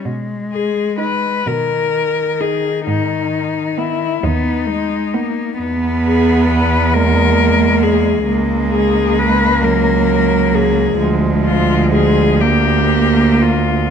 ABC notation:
X:1
M:6/8
L:1/8
Q:3/8=44
K:G#m
V:1 name="Cello"
z G B A2 G | D2 E D3 | z G B A2 G | z G B A2 G |
z ^E G =G2 E |]
V:2 name="Cello"
z2 D z2 D | z2 B, z2 B, | B,3 A,3 | G,3 F,3 |
^E,3 A,3 |]
V:3 name="Cello"
G,3 D,3- | D,3 B, G, A, | B,3 G,3 | A,6 |
G,3 A,3 |]
V:4 name="Cello" clef=bass
B,,3 B,,3 | G,,3 D,,3 | E,,6 | C,,6 |
=D,,6 |]